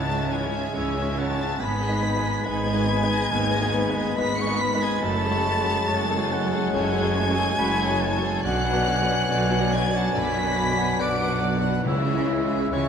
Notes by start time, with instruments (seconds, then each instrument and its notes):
Already playing: double bass section C#2, grand piano C#2 G#2 G#3 C#4 C#5, cello section C#3, french horn section G#3 C#4, oboe F#5, flute A5, violin section A6
0.10 viola section G#3 C#4, violin section G#4 E5
0.19 grand piano G#3 C#4 C#5
0.31 viola section E3 E4, violin section E4 C#5 G#6, flute G#5
0.46 grand piano G#3 C#4 C#5
0.52 viola section G#3 C#4, violin section G#4 E5
0.73 double bass section C#2, cello section C#3, viola section E3 E4, grand piano G#3 C#4 C#5, violin section E4 C#5
0.77 oboe E5
0.95 viola section G#3 C#4, violin section G#4 E5
1.02 grand piano G#3 C#4 C#5
1.17 viola section E3 E4, violin section E4 C#5 A6, oboe F#5, flute A5
1.31 grand piano G#3 C#4 C#5
1.40 viola section G#3 C#4, violin section G#4 E5
1.59 double bass section G#1, grand piano G#2, cello section G#2, french horn section G#3 B3, viola section B3 D#4, violin section B4 B6, oboe G#5, flute B5
1.80 viola section G#3 B3, violin section G#4 D#5
1.89 grand piano G#3 D#4 B4
2.01 viola section B3 D#4, violin section B4
2.16 grand piano G#3 D#4 B4
2.23 viola section G#3 B3, violin section G#4 D#5
2.45 double bass section G#1, cello section G#2, grand piano G#3 D#4 B4, viola section B3 D#4, violin section B4 G#6, flute G#5, oboe B5
2.66 viola section G#3 B3, violin section G#4 D#5
2.73 grand piano G#3 D#4 B4
2.86 viola section B3 D#4, violin section B4, oboe B5
3.02 grand piano G#3 D#4 B4
3.08 viola section G#3 B3, violin section G#4 D#5
3.30 double bass section G#1, grand piano D#2, cello section G#2, viola section B3 D#4, violin section B4, oboe G#5
3.51 viola section G#3 B3, violin section G#4 D#5
3.61 grand piano G#3 D#4 B4
3.74 viola section B3 D#4, violin section B4, oboe B5
3.89 grand piano G#3 D#4 B4
3.95 viola section G#3 B3, violin section G#4 D#5
4.16 double bass section G#1, cello section G#2, grand piano G#3 D#4 B4, viola section B3 D#4, violin section B4 B6, flute B5
4.37 viola section G#3 B3, violin section G#4 D#5 C#7, flute C#6
4.47 grand piano G#3 D#4 B4
4.59 viola section B3 D#4, violin section B4 B6, flute B5
4.75 grand piano G#3 D#4 B4
4.81 viola section G#3 B3, violin section G#4 D#5 G#6, flute G#5
4.99 cello section F#2, violin section A6
5.03 double bass section F#1, grand piano F#2, french horn section G#3 C#4, viola section A3 F#4, violin section A4 C#5, flute A5
5.24 viola section G#3 A4, violin section G#4 A4
5.30 grand piano G#3 F#4 C#5
5.46 viola section A3 F#4, violin section A4 C#5
5.60 grand piano G#3 F#4 C#5
5.67 viola section G#3 A4, violin section G#4 A4
5.87 double bass section F#1, cello section F#2, grand piano G#3 F#4 C#5, viola section A3 F#4, violin section A4 C#5, oboe A5
6.10 viola section G#3 A4, violin section G#4 A4
6.17 grand piano G#3 F#4 C#5
6.31 viola section A3 F#4, violin section A4 C#5, oboe F#5
6.45 grand piano G#3 F#4 C#5
6.51 viola section G#3 A4, violin section G#4 A4
6.73 double bass section F#1, grand piano C#2, cello section F#2, viola section A3 F#4, violin section A4 C#5 G#6, flute G#5
6.94 viola section G#3 A4, violin section G#4 A4
7.01 grand piano G#3 F#4 C#5
7.15 viola section A3 F#4, violin section A4 C#5
7.30 grand piano G#3 F#4 C#5
7.35 viola section G#3 A4, violin section G#4 A4
7.57 double bass section F#1, cello section F#2, grand piano G#3 F#4 C#5, viola section A3 F#4, violin section A4 C#5, oboe B5
7.80 viola section G#3 A4, violin section G#4 A4
7.88 grand piano G#3 F#4 C#5
8.01 viola section A3 F#4, violin section A4 C#5, oboe A5
8.17 grand piano G#3 F#4 C#5
8.21 viola section G#3 A4, violin section G#4 A4
8.43 double bass section B1, grand piano B1, cello section B2, viola section D3 F#4, french horn section F#3 D4, violin section D5 F#6, flute F#5, oboe G#5
8.65 viola section F#3 D4, violin section B4 F#5
8.73 grand piano B3 F#4 D5
8.86 viola section D3 F#4, violin section D5
9.02 grand piano B3 F#4 D5
9.09 viola section F#3 D4, violin section B4 F#5
9.29 double bass section B1, cello section B2, viola section D3 F#4, grand piano B3 F#4 D5, violin section D5
9.51 viola section F#3 D4, violin section B4 F#5
9.59 grand piano B3 F#4 D5
9.72 viola section D3 F#4, violin section D5 G#6, flute G#5
9.88 grand piano B3 F#4 D5
9.93 viola section F#3 D4, violin section B4 F#5 A6, flute A5
10.13 double bass section B1, grand piano F#2, cello section B2, viola section D3 F#4, violin section D5
10.18 flute B5, violin section B6
10.35 viola section F#3 D4, violin section B4 F#5
10.43 grand piano B3 F#4 D5
10.56 viola section D3 F#4, violin section D5
10.71 grand piano B3 F#4 D5
10.76 viola section F#3 D4, violin section B4 F#5
10.97 double bass section B1, cello section B2, viola section D3 F#4, grand piano B3 F#4 D5, violin section D5 D7, oboe F#5
11.02 flute D6
11.19 viola section F#3 D4, violin section B4 F#5
11.27 grand piano B3 F#4 D5
11.40 viola section D3 F#4, violin section D5
11.56 grand piano B3 F#4 D5
11.62 viola section F#3 D4, violin section B4 F#5
11.81 grand piano C#2, viola section E3 E4, french horn section G#3 E4, violin section E4 C#5
11.86 double bass section C#2, timpani C#3, cello section C#3, oboe E5
12.04 viola section G#3 C#4, violin section G#4 E5
12.14 grand piano G#3 E4 C#5
12.27 viola section E3 E4, violin section E4 C#5
12.44 grand piano G#3 E4 C#5
12.48 viola section G#3 C#4, violin section G#4 E5
12.71 double bass section C#2, cello section C#3, viola section E3 E4, grand piano G#3 E4 C#5, violin section E4 C#5 C#6, flute C#5, oboe G#5